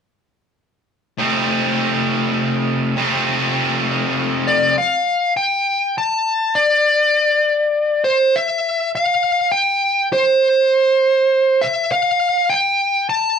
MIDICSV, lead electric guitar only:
0, 0, Header, 1, 2, 480
1, 0, Start_track
1, 0, Tempo, 597015
1, 946, Time_signature, 3, 2, 24, 8
1, 10766, End_track
2, 0, Start_track
2, 0, Title_t, "Lead electric guitar"
2, 0, Program_c, 0, 29
2, 3598, Note_on_c, 0, 74, 38
2, 3818, Note_off_c, 0, 74, 0
2, 3842, Note_on_c, 0, 77, 42
2, 4285, Note_off_c, 0, 77, 0
2, 4315, Note_on_c, 0, 79, 47
2, 4804, Note_off_c, 0, 79, 0
2, 4807, Note_on_c, 0, 81, 52
2, 5267, Note_on_c, 0, 74, 46
2, 5294, Note_off_c, 0, 81, 0
2, 6467, Note_on_c, 0, 72, 42
2, 6505, Note_off_c, 0, 74, 0
2, 6716, Note_off_c, 0, 72, 0
2, 6720, Note_on_c, 0, 76, 47
2, 7163, Note_off_c, 0, 76, 0
2, 7199, Note_on_c, 0, 77, 49
2, 7641, Note_off_c, 0, 77, 0
2, 7651, Note_on_c, 0, 79, 55
2, 8107, Note_off_c, 0, 79, 0
2, 8143, Note_on_c, 0, 72, 47
2, 9339, Note_on_c, 0, 76, 46
2, 9378, Note_off_c, 0, 72, 0
2, 9578, Note_off_c, 0, 76, 0
2, 9581, Note_on_c, 0, 77, 53
2, 10046, Note_on_c, 0, 79, 56
2, 10075, Note_off_c, 0, 77, 0
2, 10525, Note_off_c, 0, 79, 0
2, 10528, Note_on_c, 0, 81, 62
2, 10766, Note_off_c, 0, 81, 0
2, 10766, End_track
0, 0, End_of_file